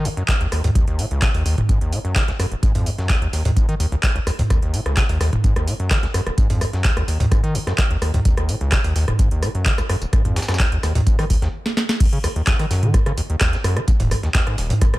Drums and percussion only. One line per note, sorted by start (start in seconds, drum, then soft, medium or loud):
0.05 open hi-hat loud
0.05 tambourine medium
0.17 closed hi-hat soft
0.28 kick loud
0.28 snare loud
0.28 clap loud
0.28 closed hi-hat medium
0.28 tambourine medium
0.41 closed hi-hat soft
0.52 cross-stick medium
0.52 open hi-hat loud
0.52 tambourine medium
0.64 closed hi-hat soft
0.64 mid tom medium
0.75 kick loud
0.75 closed hi-hat medium
0.75 tambourine medium
0.88 closed hi-hat soft
0.99 open hi-hat loud
0.99 tambourine medium
1.11 closed hi-hat soft
1.22 kick loud
1.22 snare loud
1.22 clap loud
1.22 closed hi-hat medium
1.22 tambourine medium
1.34 closed hi-hat soft
1.46 open hi-hat loud
1.46 tambourine medium
1.58 closed hi-hat soft
1.58 mid tom medium
1.69 kick loud
1.69 closed hi-hat medium
1.69 tambourine medium
1.81 closed hi-hat soft
1.93 open hi-hat loud
1.93 tambourine medium
2.05 closed hi-hat soft
2.16 kick loud
2.16 snare loud
2.16 clap loud
2.16 closed hi-hat medium
2.16 tambourine medium
2.28 snare soft
2.28 closed hi-hat soft
2.39 cross-stick medium
2.39 open hi-hat loud
2.39 tambourine medium
2.52 closed hi-hat soft
2.63 kick loud
2.63 closed hi-hat medium
2.63 tambourine medium
2.75 closed hi-hat soft
2.75 mid tom medium
2.86 open hi-hat loud
2.86 tambourine medium
2.98 snare soft
2.98 closed hi-hat soft
3.09 kick loud
3.09 snare loud
3.09 clap loud
3.09 closed hi-hat medium
3.09 tambourine medium
3.22 closed hi-hat soft
3.33 snare soft
3.33 open hi-hat loud
3.33 tambourine medium
3.45 closed hi-hat soft
3.45 mid tom medium
3.57 kick loud
3.57 closed hi-hat medium
3.57 tambourine medium
3.69 closed hi-hat soft
3.80 open hi-hat loud
3.80 tambourine medium
3.92 closed hi-hat soft
4.03 kick loud
4.03 snare loud
4.03 clap loud
4.03 closed hi-hat medium
4.03 tambourine medium
4.16 closed hi-hat soft
4.27 cross-stick medium
4.27 open hi-hat loud
4.27 tambourine medium
4.39 closed hi-hat soft
4.39 mid tom medium
4.50 kick loud
4.50 cross-stick medium
4.50 closed hi-hat medium
4.50 tambourine medium
4.62 closed hi-hat soft
4.74 open hi-hat loud
4.74 tambourine medium
4.86 cross-stick medium
4.86 closed hi-hat soft
4.97 kick loud
4.97 snare loud
4.97 clap loud
4.97 closed hi-hat medium
4.97 tambourine medium
5.09 closed hi-hat soft
5.21 cross-stick medium
5.21 snare soft
5.21 open hi-hat loud
5.21 tambourine medium
5.33 closed hi-hat soft
5.33 mid tom medium
5.44 kick loud
5.44 closed hi-hat medium
5.44 tambourine medium
5.56 cross-stick medium
5.56 closed hi-hat soft
5.67 open hi-hat loud
5.67 tambourine medium
5.80 closed hi-hat soft
5.91 kick loud
5.91 cross-stick medium
5.91 snare loud
5.91 clap loud
5.91 closed hi-hat medium
5.91 tambourine medium
6.03 snare medium
6.03 closed hi-hat soft
6.14 cross-stick medium
6.14 open hi-hat loud
6.14 tambourine medium
6.27 cross-stick medium
6.27 closed hi-hat soft
6.38 kick loud
6.38 closed hi-hat medium
6.38 tambourine medium
6.50 closed hi-hat soft
6.50 mid tom medium
6.61 cross-stick medium
6.61 open hi-hat medium
6.61 tambourine medium
6.73 snare soft
6.73 closed hi-hat soft
6.84 kick loud
6.84 snare loud
6.84 clap loud
6.84 closed hi-hat medium
6.84 tambourine medium
6.97 cross-stick medium
6.97 closed hi-hat soft
7.08 open hi-hat loud
7.08 tambourine medium
7.20 closed hi-hat soft
7.20 mid tom medium
7.32 kick loud
7.32 cross-stick medium
7.32 closed hi-hat medium
7.32 tambourine medium
7.44 closed hi-hat soft
7.55 open hi-hat loud
7.55 tambourine medium
7.67 cross-stick medium
7.67 snare soft
7.67 closed hi-hat soft
7.78 kick loud
7.78 snare loud
7.78 clap loud
7.78 closed hi-hat medium
7.78 tambourine medium
7.91 closed hi-hat soft
8.02 cross-stick medium
8.02 open hi-hat medium
8.02 tambourine medium
8.14 closed hi-hat soft
8.14 mid tom medium
8.25 kick loud
8.25 closed hi-hat loud
8.25 tambourine medium
8.37 cross-stick medium
8.37 closed hi-hat soft
8.49 open hi-hat medium
8.49 tambourine medium
8.61 closed hi-hat soft
8.72 kick loud
8.72 cross-stick medium
8.72 snare loud
8.72 clap loud
8.72 closed hi-hat medium
8.72 tambourine medium
8.84 closed hi-hat soft
8.96 snare soft
8.96 open hi-hat loud
8.96 tambourine medium
9.08 cross-stick medium
9.08 closed hi-hat soft
9.08 mid tom medium
9.19 kick loud
9.19 closed hi-hat medium
9.19 tambourine medium
9.31 closed hi-hat soft
9.43 cross-stick medium
9.43 open hi-hat loud
9.43 tambourine medium
9.55 closed hi-hat soft
9.66 kick loud
9.66 clap loud
9.66 closed hi-hat medium
9.66 tambourine medium
9.78 cross-stick medium
9.78 closed hi-hat soft
9.78 tambourine medium
9.89 cross-stick medium
9.89 open hi-hat medium
10.02 closed hi-hat soft
10.02 tambourine medium
10.13 kick loud
10.13 cross-stick medium
10.13 closed hi-hat loud
10.13 tambourine medium
10.25 closed hi-hat soft
10.25 mid tom medium
10.36 snare medium
10.36 open hi-hat loud
10.36 tambourine medium
10.42 snare medium
10.42 tambourine medium
10.48 cross-stick medium
10.48 snare medium
10.48 closed hi-hat soft
10.48 tambourine medium
10.54 snare medium
10.54 tambourine medium
10.60 kick loud
10.60 snare loud
10.60 clap loud
10.60 closed hi-hat loud
10.60 tambourine medium
10.72 closed hi-hat soft
10.83 cross-stick medium
10.83 snare soft
10.83 open hi-hat loud
10.83 tambourine medium
10.95 closed hi-hat soft
10.95 mid tom medium
11.07 kick loud
11.07 closed hi-hat loud
11.07 tambourine medium
11.19 cross-stick medium
11.19 open hi-hat medium
11.30 kick medium
11.30 open hi-hat loud
11.30 tambourine medium
11.42 snare soft
11.42 closed hi-hat soft
11.66 snare medium
11.77 snare medium
11.89 snare medium
12.00 kick loud
12.00 closed hi-hat loud
12.00 crash loud
12.00 tambourine medium
12.13 closed hi-hat soft
12.24 cross-stick medium
12.24 open hi-hat loud
12.24 tambourine medium
12.36 closed hi-hat soft
12.47 kick loud
12.47 snare loud
12.47 clap loud
12.47 closed hi-hat medium
12.47 tambourine medium
12.59 cross-stick soft
12.59 closed hi-hat soft
12.71 snare soft
12.71 open hi-hat loud
12.71 tambourine medium
12.83 closed hi-hat soft
12.83 mid tom medium
12.94 kick loud
12.94 cross-stick medium
12.94 closed hi-hat loud
12.94 tambourine medium
13.06 cross-stick medium
13.06 closed hi-hat soft
13.18 open hi-hat loud
13.18 tambourine medium
13.30 closed hi-hat soft
13.41 kick loud
13.41 cross-stick soft
13.41 snare loud
13.41 clap loud
13.41 closed hi-hat loud
13.41 tambourine medium
13.53 snare medium
13.53 closed hi-hat soft
13.64 cross-stick medium
13.64 open hi-hat loud
13.64 tambourine medium
13.77 cross-stick medium
13.77 closed hi-hat soft
13.88 kick loud
13.88 closed hi-hat loud
13.88 tambourine medium
14.00 closed hi-hat soft
14.00 mid tom medium
14.11 cross-stick medium
14.11 open hi-hat loud
14.11 tambourine medium
14.23 snare soft
14.23 closed hi-hat soft
14.34 kick loud
14.34 snare loud
14.34 clap loud
14.34 closed hi-hat medium
14.34 tambourine medium
14.47 cross-stick soft
14.47 closed hi-hat soft
14.58 snare medium
14.58 open hi-hat loud
14.58 tambourine medium
14.70 closed hi-hat soft
14.70 mid tom loud
14.81 kick loud
14.81 cross-stick medium
14.81 closed hi-hat loud
14.81 tambourine medium
14.94 cross-stick medium
14.94 closed hi-hat soft